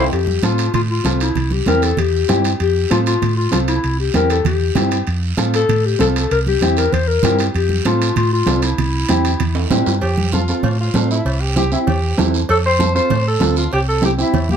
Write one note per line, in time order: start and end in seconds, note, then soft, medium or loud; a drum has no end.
0.12 0.37 F2 loud
0.12 0.41 G4 loud
0.12 high timbale medium
0.12 long guiro medium
0.27 high conga medium
0.43 0.68 A2 medium
0.43 0.65 C4 medium
0.43 0.65 F4 medium
0.43 0.72 F4 medium
0.43 0.65 A4 medium
0.43 high conga medium
0.43 high timbale medium
0.43 short guiro medium
0.58 high timbale medium
0.58 short guiro medium
0.74 0.99 A2 medium
0.74 0.81 F4 loud
0.74 low conga medium
0.74 high timbale medium
0.74 long guiro medium
0.91 1.19 F4 medium
1.05 1.30 C2 medium
1.05 1.27 C4 medium
1.05 1.27 F4 medium
1.05 1.27 A4 medium
1.05 high conga medium
1.05 high timbale medium
1.05 low timbale medium
1.05 short guiro medium
1.20 1.54 E4 medium
1.20 high timbale medium
1.20 short guiro medium
1.35 1.61 C2 medium
1.35 low conga medium
1.35 high timbale medium
1.35 long guiro medium
1.51 1.67 G4 medium
1.51 high conga medium
1.66 1.92 E2 medium
1.66 1.89 C4 medium
1.66 1.89 E4 medium
1.66 1.89 G4 medium
1.66 1.84 A#4 loud
1.66 high conga medium
1.66 high timbale medium
1.66 short guiro medium
1.82 2.00 A4 medium
1.82 high timbale medium
1.82 short guiro medium
1.97 2.23 E2 loud
1.97 2.45 G4 loud
1.97 low conga medium
1.97 high timbale medium
1.97 long guiro medium
2.28 2.54 G2 medium
2.28 2.51 C4 medium
2.28 2.51 E4 medium
2.28 2.51 G4 medium
2.28 high conga medium
2.28 high timbale medium
2.28 low timbale medium
2.28 short guiro medium
2.44 high timbale medium
2.44 short guiro medium
2.60 2.85 F2 loud
2.60 2.89 G4 loud
2.60 high timbale medium
2.60 long guiro medium
2.91 3.15 A2 medium
2.91 3.12 C4 medium
2.91 3.12 F4 medium
2.91 2.99 F4 medium
2.91 3.13 A4 medium
2.91 high conga medium
2.91 high timbale medium
2.91 short guiro medium
3.06 3.35 F4 loud
3.06 high timbale medium
3.06 short guiro medium
3.22 3.46 A2 medium
3.22 low conga medium
3.22 high timbale medium
3.22 long guiro medium
3.37 3.51 F4 medium
3.52 3.77 C2 medium
3.52 3.74 C4 medium
3.52 3.59 F4 medium
3.52 3.74 F4 medium
3.52 3.74 A4 medium
3.52 high conga medium
3.52 high timbale medium
3.52 short guiro medium
3.68 3.97 E4 medium
3.68 high timbale medium
3.68 short guiro medium
3.84 4.09 C2 medium
3.84 high timbale medium
3.84 long guiro medium
4.00 4.14 G4 medium
4.14 4.39 E2 medium
4.14 4.36 C4 medium
4.14 4.36 E4 medium
4.14 4.36 G4 medium
4.14 4.29 A#4 medium
4.14 high conga medium
4.14 high timbale medium
4.14 short guiro medium
4.30 4.45 A4 medium
4.30 high timbale medium
4.30 short guiro medium
4.45 4.70 E2 loud
4.45 4.89 G4 medium
4.45 low conga medium
4.45 high timbale medium
4.45 long guiro medium
4.75 5.01 G2 medium
4.75 4.97 C4 medium
4.75 4.98 E4 medium
4.75 4.98 G4 medium
4.75 high conga medium
4.75 low conga medium
4.75 high timbale medium
4.75 low timbale medium
4.75 short guiro medium
4.91 high timbale medium
4.91 short guiro medium
5.07 5.32 F2 loud
5.07 high timbale medium
5.07 long guiro medium
5.37 5.63 A2 medium
5.37 5.59 C4 medium
5.37 5.59 F4 medium
5.37 5.60 A4 medium
5.37 high conga medium
5.37 high timbale medium
5.37 short guiro medium
5.54 5.87 A4 medium
5.54 high timbale medium
5.54 short guiro medium
5.69 5.94 A2 loud
5.69 low conga medium
5.69 high timbale medium
5.69 long guiro medium
5.86 6.00 G4 medium
5.99 6.25 C2 medium
5.99 6.21 C4 medium
5.99 6.22 F4 medium
5.99 6.07 A4 medium
5.99 6.22 A4 medium
5.99 high conga medium
5.99 high timbale medium
5.99 short guiro medium
6.16 6.31 A4 medium
6.16 high timbale medium
6.16 short guiro medium
6.31 6.56 C2 loud
6.31 6.39 A#4 medium
6.31 high timbale medium
6.31 long guiro medium
6.46 6.79 G4 loud
6.46 high conga medium
6.61 6.87 E2 medium
6.61 6.84 C4 medium
6.61 6.84 E4 medium
6.61 6.84 G4 medium
6.61 high conga medium
6.61 high timbale medium
6.61 short guiro medium
6.77 6.94 A#4 loud
6.77 high timbale medium
6.77 short guiro medium
6.92 7.18 E2 loud
6.92 7.09 C5 loud
6.92 low conga medium
6.92 high timbale medium
6.92 long guiro medium
7.08 7.39 A#4 loud
7.23 7.48 G2 medium
7.23 7.45 C4 medium
7.23 7.46 E4 medium
7.23 7.46 G4 medium
7.23 high conga medium
7.23 low conga medium
7.23 high timbale medium
7.23 low timbale medium
7.23 short guiro medium
7.39 high timbale medium
7.39 short guiro medium
7.54 7.79 F2 loud
7.54 7.83 G4 medium
7.54 high timbale medium
7.54 long guiro medium
7.69 high conga medium
7.85 8.10 A2 medium
7.85 8.07 C4 medium
7.85 8.07 F4 medium
7.85 8.15 F4 medium
7.85 8.08 A4 medium
7.85 high conga medium
7.85 high timbale medium
7.85 short guiro medium
8.02 high timbale medium
8.02 short guiro medium
8.16 8.41 A2 medium
8.16 8.31 F4 loud
8.16 low conga medium
8.16 high timbale medium
8.16 long guiro medium
8.33 8.61 F4 loud
8.46 8.72 C2 medium
8.46 8.68 C4 medium
8.46 8.69 F4 medium
8.46 8.69 A4 medium
8.46 high conga medium
8.46 high timbale medium
8.46 low timbale medium
8.46 short guiro medium
8.62 9.82 E4 medium
8.62 high timbale medium
8.62 short guiro medium
8.78 9.03 C2 loud
8.78 low conga medium
8.78 high timbale medium
8.78 long guiro medium
9.09 9.34 E2 medium
9.09 9.31 C4 medium
9.09 9.31 E4 medium
9.09 9.31 G4 medium
9.09 high conga medium
9.09 high timbale medium
9.09 short guiro medium
9.25 high timbale medium
9.25 short guiro medium
9.40 9.65 E2 loud
9.40 low conga medium
9.40 high timbale medium
9.40 long guiro medium
9.55 high timbale medium
9.70 9.85 A2 medium
9.70 9.93 C4 medium
9.70 9.93 E4 medium
9.70 9.93 G4 medium
9.70 high conga medium
9.70 low conga medium
9.70 low timbale medium
9.70 short guiro medium
9.86 10.00 G2 medium
9.86 low timbale medium
9.86 short guiro medium
10.01 10.52 F2 medium
10.01 10.31 G4 medium
10.01 cowbell medium
10.01 long guiro medium
10.18 high conga medium
10.33 10.39 C4 medium
10.33 10.62 F4 medium
10.33 10.39 F4 medium
10.33 10.39 A4 medium
10.33 high conga medium
10.33 short guiro medium
10.48 10.65 C4 medium
10.48 10.65 F4 medium
10.48 10.65 A4 medium
10.48 short guiro medium
10.63 10.88 A2 loud
10.63 10.78 F4 medium
10.63 cowbell medium
10.63 low conga medium
10.63 long guiro medium
10.81 11.09 F4 medium
10.94 11.19 A2 medium
10.94 11.16 C4 medium
10.94 11.17 F4 medium
10.94 11.17 A4 medium
10.94 high conga medium
10.94 low timbale medium
10.94 short guiro medium
11.11 11.42 E4 medium
11.11 short guiro medium
11.25 11.75 C2 loud
11.25 cowbell medium
11.25 long guiro medium
11.41 11.56 G4 medium
11.56 11.62 C4 medium
11.56 11.62 E4 medium
11.56 11.71 G4 medium
11.56 11.62 G4 medium
11.56 high conga medium
11.56 short guiro medium
11.72 11.88 C4 medium
11.72 11.88 E4 medium
11.72 11.80 E4 medium
11.72 11.88 G4 medium
11.72 short guiro medium
11.87 12.12 E2 loud
11.87 12.31 G4 medium
11.87 cowbell medium
11.87 low conga medium
11.87 long guiro medium
12.18 12.43 E2 medium
12.18 12.40 C4 medium
12.18 12.40 E4 medium
12.18 12.40 A4 medium
12.18 high conga medium
12.18 low timbale medium
12.18 short guiro medium
12.34 short guiro medium
12.49 12.99 F2 medium
12.49 12.57 A4 loud
12.49 cowbell medium
12.49 long guiro medium
12.66 12.94 C5 loud
12.79 12.85 C4 medium
12.79 12.85 F4 medium
12.79 12.85 A4 medium
12.79 high conga medium
12.79 short guiro medium
12.95 13.11 C4 medium
12.95 13.11 F4 medium
12.95 13.12 A4 medium
12.95 13.24 C5 medium
12.95 short guiro medium
13.10 13.36 A2 medium
13.10 cowbell medium
13.10 low conga medium
13.10 long guiro medium
13.28 13.56 A4 medium
13.40 13.66 D2 medium
13.40 13.63 C4 medium
13.40 13.63 F4 medium
13.40 13.63 A4 medium
13.40 high conga medium
13.40 low timbale medium
13.40 short guiro medium
13.56 13.72 F4 medium
13.56 short guiro medium
13.71 14.22 C2 medium
13.71 13.80 G4 loud
13.71 cowbell medium
13.71 long guiro medium
13.89 14.03 A4 medium
14.02 14.08 C4 medium
14.02 14.08 E4 medium
14.02 14.09 G4 medium
14.02 14.12 G4 medium
14.02 high conga medium
14.02 short guiro medium
14.18 14.35 C4 medium
14.18 14.35 E4 medium
14.18 14.49 E4 medium
14.18 14.35 G4 medium
14.18 short guiro medium
14.34 14.57 E2 medium
14.34 cowbell medium
14.34 low conga medium
14.34 long guiro medium
14.49 14.57 A#3 medium
14.49 14.57 G4 medium
14.49 high conga medium